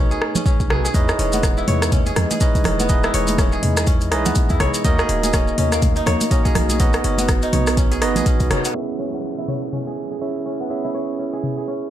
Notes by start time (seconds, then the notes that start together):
Already playing: B1 A3 B3 C#4 D#4 F#4 G#4 A4 B4 C#5 D#5
0.11 G#4, maracas
0.22 cross-stick
0.35 C#4, high conga, low conga, maracas
0.46 C#4, kick, maracas
0.60 B1, kick, maracas
0.70 D#4 F#4 G#4 A4 B4 G#5, cross-stick, mid tom
0.85 G#4, maracas
0.94 E2 E3 G#3 C#4 D#4 E4 G#4 B4 D#5, kick, closed hi-hat, high conga, maracas
1.09 cross-stick, maracas
1.19 E1 C#4, open hi-hat
1.32 B3, closed hi-hat, high conga, maracas
1.43 kick, cross-stick, closed hi-hat, maracas
1.57 E4, maracas
1.68 E2 C#5, open hi-hat, mid tom, high conga
1.82 cross-stick, closed hi-hat, maracas
1.92 C#4, kick, closed hi-hat, mid tom, high conga, maracas
2.06 G#4, closed hi-hat, maracas
2.16 E2, cross-stick, open hi-hat, low conga
2.31 G#4, closed hi-hat, high conga, maracas
2.40 C#4 D#4 E4 G#4 B4 D#5, kick, closed hi-hat, maracas
2.55 kick, closed hi-hat, maracas
2.64 E1 C#4, cross-stick, open hi-hat, low conga
2.79 B3, closed hi-hat, high conga, maracas
2.89 D#4 E4 G#4 B4 D#5, kick, closed hi-hat, high conga, maracas
3.03 E4, cross-stick, maracas
3.14 E1 C#5, open hi-hat
3.27 closed hi-hat, high conga, maracas
3.38 C#4, kick, cross-stick, closed hi-hat, maracas
3.52 G#4, maracas
3.63 E2, open hi-hat, mid tom, high conga
3.77 G#4, cross-stick, closed hi-hat, maracas
3.87 C#4, kick, closed hi-hat, maracas
4.01 closed hi-hat, maracas
4.11 B1 C#4 D#4 E4 G#4 B4 D#5, cross-stick, open hi-hat
4.26 E2 B3, closed hi-hat, high conga, low conga, maracas
4.35 kick, closed hi-hat, maracas
4.50 E2 E4, kick, closed hi-hat, maracas
4.60 B1 C#5, cross-stick, open hi-hat, mid tom
4.74 closed hi-hat, maracas
4.84 D#2 A#3 C#4 D#4 F#4 A#4 D#5, kick, closed hi-hat, high conga, maracas
4.99 G#4, cross-stick, maracas
5.09 D#1, open hi-hat
5.23 G#4, closed hi-hat, high conga, maracas
5.33 C#4, kick, cross-stick, closed hi-hat, maracas
5.48 maracas
5.58 D#2 C#4, open hi-hat, mid tom, high conga
5.72 A#3, cross-stick, closed hi-hat, maracas
5.82 kick, closed hi-hat, mid tom, high conga, maracas
5.96 D#4, closed hi-hat, maracas
6.06 D#2 C#5, cross-stick, open hi-hat, low conga
6.21 closed hi-hat, high conga, maracas
6.31 A#3 C#4 D#4 F#4 A#4 D#5, kick, closed hi-hat, maracas
6.45 G#4, kick, closed hi-hat, maracas
6.55 B1, cross-stick, open hi-hat, low conga
6.69 G#4, closed hi-hat, high conga, maracas
6.80 B3 C#4 D#4 F#4 B4 D#5, kick, closed hi-hat, high conga, maracas
6.93 cross-stick, closed hi-hat, maracas
7.04 F#1 C#4, open hi-hat
7.18 B3, closed hi-hat, high conga, maracas
7.29 kick, cross-stick, closed hi-hat, maracas
7.42 D#4, closed hi-hat, maracas
7.53 B1 C#5, open hi-hat, mid tom, high conga, low conga
7.67 cross-stick, open hi-hat, maracas
7.77 C#4, kick, closed hi-hat, maracas
7.92 G#4, closed hi-hat, maracas
8.02 F#1 B3 D#4 F#4 B4 D#5, cross-stick, open hi-hat
8.16 B1 G#4, closed hi-hat, high conga, low conga, maracas
8.26 C#4, kick, closed hi-hat, maracas
8.40 B1, kick, closed hi-hat, maracas
8.51 F#1 C#4, cross-stick, open hi-hat, mid tom
8.65 B3, closed hi-hat, maracas
8.75 C#4 E4 G#4 C#5 E5, downlifter
8.99 C#4
9.14 B3
9.38 E4
9.48 C#5, mid tom
9.73 C#4, mid tom
9.87 G#4
10.11 G#4
10.21 C#4 E4 G#4 C#5 E5
10.46 C#4
10.60 B3
10.70 C#4 E4 G#4 C#5 E5
10.84 E4
10.94 C#5
11.19 C#4
11.33 G#4
11.43 mid tom
11.58 G#4
11.68 C#4